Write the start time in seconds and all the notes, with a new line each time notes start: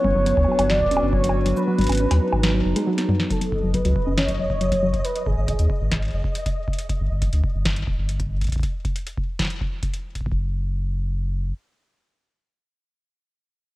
Already playing: G3 B3 D4 E4 B4 C#5
0.04 G1 C#4, kick, low conga
0.15 G1 F#3
0.26 F#3 F#4, closed hi-hat
0.37 D2, kick, high bongo
0.44 F#3, high bongo
0.52 high bongo
0.59 G1 F#3, closed hi-hat, high bongo
0.70 F#3 D5, snare
0.81 kick
0.83 kick
0.86 kick
0.89 D1 C#4, kick, closed hi-hat
0.97 high bongo
1.02 G1 C#4
1.13 F#3 C#5, kick
1.24 F#3, closed hi-hat, cabasa
1.29 high bongo
1.46 F#3, closed hi-hat
1.57 F#3 G#3 B4, cabasa
1.67 F#3 D#4
1.78 G#1, closed hi-hat, low conga
1.81 closed hi-hat
1.84 closed hi-hat
1.87 G#1 C#4, closed hi-hat
1.89 closed hi-hat, high bongo
1.92 closed hi-hat
1.95 closed hi-hat
1.97 C#4, closed hi-hat
2.11 D#2 F#3, closed hi-hat, high bongo
2.22 F#3
2.33 G#1, high bongo
2.44 F#3, snare, closed hi-hat
2.54 F#3
2.65 F#1
2.76 G#3, closed hi-hat
2.87 F#3
2.98 F#3, snare, closed hi-hat
3.09 F#3, mid tom, low conga
3.20 F#3, snare
3.31 F#3 A4 D#5, kick, closed hi-hat
3.41 F#3, closed hi-hat
3.52 F#1, kick
3.63 F#1 F#3
3.74 F#3 B4, kick, closed hi-hat
3.85 C#2 F#3, closed hi-hat
3.96 kick
4.07 F#1 C#4
4.17 C#4 C#5, snare, closed hi-hat
4.28 F#3, kick, closed hi-hat
4.39 E1 F#3
4.50 F#1, kick
4.61 F#3, closed hi-hat
4.72 F#3, kick, closed hi-hat
4.83 F#3
4.94 kick, closed hi-hat
5.04 B4, closed hi-hat
5.15 closed hi-hat
5.26 G#1 G#4, kick
5.37 G#1
5.48 kick, closed hi-hat
5.59 D#2, closed hi-hat
5.70 kick
5.81 G#1
5.91 kick, snare, closed hi-hat
6.02 closed hi-hat
6.05 closed hi-hat
6.08 closed hi-hat
6.10 F#1, closed hi-hat
6.24 kick
6.35 closed hi-hat
6.46 kick, closed hi-hat
6.68 kick
6.73 closed hi-hat
6.78 closed hi-hat
6.89 kick, closed hi-hat
7.00 G1
7.11 G1
7.22 kick, closed hi-hat
7.33 D2, closed hi-hat
7.44 kick
7.54 G1
7.65 kick, snare, closed hi-hat
7.76 closed hi-hat
7.87 D1, kick
7.98 G1
8.09 closed hi-hat
8.20 kick, closed hi-hat
8.41 kick, closed hi-hat
8.44 kick, closed hi-hat
8.47 kick, closed hi-hat
8.50 kick, closed hi-hat
8.52 closed hi-hat
8.55 kick, closed hi-hat
8.58 kick, closed hi-hat
8.60 kick, closed hi-hat
8.63 closed hi-hat
8.85 kick, closed hi-hat
8.96 closed hi-hat
9.07 closed hi-hat
9.18 kick
9.39 kick, snare, closed hi-hat
9.42 snare
9.45 snare
9.47 snare, closed hi-hat
9.61 kick
9.83 kick, closed hi-hat
9.94 closed hi-hat
10.15 kick, closed hi-hat
10.21 kick
10.26 F#1, kick
10.32 kick